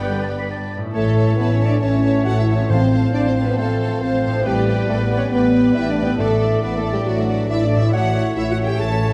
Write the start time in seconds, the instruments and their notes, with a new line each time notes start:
Already playing: double bass section G1, harp G2 D4 G4 D5, cello section B3, flute B4, violin section B4 G5 B5, clarinet D5, viola section D5
0.05 trombone section D3 G3, french horn section G4 D5, oboe G5
0.23 oboe A5
0.38 oboe B5
0.51 oboe A5
0.77 harp A2
0.82 harp C#4
0.86 harp E4
0.91 double bass section A1, cello section A2, french horn section A3, trombone section C#4, harp A4, viola section A4 C#5, violin section A4, clarinet A4, oboe C#5, flute E5
0.95 trombone section E3, violin section E5 A5
1.16 viola section A4 C#5, violin section E5 A5
1.37 double bass section A1, cello section A2, french horn section B3, viola section A4 C#5, clarinet B4, violin section B4 E5 A5
1.51 french horn section C#4, clarinet C#5, violin section C#5
1.60 viola section A4 C#5, violin section E5 A5
1.65 french horn section D4, clarinet D5, violin section D5
1.80 double bass section A1, cello section A2, french horn section C#4, viola section A4 C#5, clarinet C#5, violin section C#5 E5 A5, oboe C#5, flute E5
2.04 viola section A4 C#5, violin section E5 A5
2.24 double bass section A1, cello section A2, french horn section F#4, viola section A4 C#5, violin section E5 F#5 A5, clarinet F#5
2.40 french horn section E4, clarinet E5, violin section E5
2.47 viola section A4 C#5, violin section E5 A5
2.52 harp A2, violin section C#5, clarinet C#5
2.56 harp C4, french horn section C#4
2.61 harp F4
2.65 harp A4
2.69 double bass section A1, cello section A2, timpani A2, trombone section F3 C4, french horn section C4, viola section A4 C5, violin section C5 F5 A5, clarinet C5, oboe C5, flute F5
2.92 viola section A4 C5, violin section F5 A5
3.13 double bass section A1, cello section A2, french horn section D4, viola section A4 C5, violin section D5 F5 A5, clarinet D5
3.27 french horn section C4, violin section C5, clarinet C5
3.35 viola section A4 C5, violin section F5 A5
3.41 violin section B4, clarinet B4
3.46 french horn section B3
3.56 double bass section A1, cello section A2, french horn section A3, violin section A4 F5 A5, viola section A4 C5, clarinet A4, oboe C5, flute F5
3.79 viola section A4 C5, violin section F5 A5
4.01 double bass section A1, cello section A2, french horn section C4, viola section A4 C5, violin section C5 F5 A5, oboe C5, clarinet C5, flute F5
4.24 harp A2, viola section A4 C5, violin section F5 A5
4.31 harp D4
4.36 harp G4
4.41 harp B4, violin section D5 G5
4.45 double bass section A1, cello section A2, trombone section G3 B3, french horn section G3, violin section G4, clarinet G4, viola section B4 D5, oboe B4, flute D5
4.67 viola section B4 D5, violin section D5 G5
4.89 double bass section A1, cello section A2, french horn section A3, violin section A4 D5 G5, clarinet A4, viola section B4 D5
5.03 french horn section B3, clarinet B4, violin section B4
5.10 viola section B4 D5, violin section D5 G5
5.18 french horn section C#4, clarinet C#5, violin section C#5
5.32 double bass section A1, cello section A2, french horn section B3, violin section B4 D5 G5, viola section B4 D5, oboe B4, clarinet B4, flute D5
5.53 viola section B4 D5, violin section D5 G5
5.75 double bass section A1, cello section A2, french horn section E4, viola section B4 D5, violin section D5 E5 G5, clarinet E5
5.90 french horn section D4, violin section D5, clarinet D5
5.95 viola section B4 D5, violin section D5 G5
6.01 harp A2, french horn section B3
6.06 harp D4, violin section B4, clarinet B4
6.10 harp E4
6.15 french horn section A3, harp A4, viola section A4 D5, violin section D5 E5
6.19 double bass section A1, timpani A2, cello section A2, trombone section E3 D4, violin section A4, clarinet A4, oboe D5, flute E5
6.40 viola section A4 D5, violin section D5 E5
6.62 double bass section A1, cello section A2, french horn section B3, viola section A4 D5, violin section B4 D5 E5, clarinet B4
6.78 french horn section A3, clarinet A4, violin section A4
6.84 viola section A4 D5, violin section D5 E5
6.92 french horn section G3, violin section G4, clarinet G4
7.06 double bass section A1, cello section A2, french horn section F#3, violin section F#4 D5 E5, clarinet F#4, viola section A4 D5
7.27 viola section A4 D5, violin section D5 E5
7.49 double bass section A1, cello section A2, french horn section E4, viola section A4 D5, oboe D5, violin section D5 E5, clarinet E5, flute E5
7.64 french horn section D4, clarinet D5, violin section D5
7.70 viola section A4 D5, violin section D5 E5
7.75 harp A2, violin section E5
7.80 harp C#4, french horn section E4, clarinet E5
7.84 harp E4
7.89 harp A4, viola section A4 C#5
7.93 double bass section A1, cello section A2, trombone section E3 C#4, french horn section F#4, oboe C#5, violin section E5 F#5, flute E5, clarinet F#5
8.14 viola section A4 C#5, violin section E5
8.36 double bass section A1, cello section A2, french horn section E4, viola section A4 C#5, violin section E5, clarinet E5
8.51 french horn section F#4, violin section F#5, clarinet F#5
8.58 viola section A4 C#5, violin section E5
8.65 french horn section G4, violin section G5, clarinet G5
8.80 double bass section A1, cello section A2, viola section A4 C#5, french horn section A4, violin section E5 A5, clarinet A5
9.00 viola section A4 C#5, violin section E5